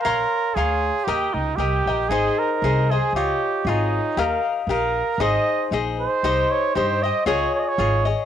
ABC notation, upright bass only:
X:1
M:2/4
L:1/8
Q:"Swing" 1/4=117
K:Ab
V:1 name="Upright bass" clef=bass
B,,, z =D,,2 | E,, D,, C,, B,,, | A,,, z C,,2 | D,, z A,,,2 |
E,, z B,,,2 | A,,, z B,,,2 | C,, z G,,2 | D,, z A,,,2 |]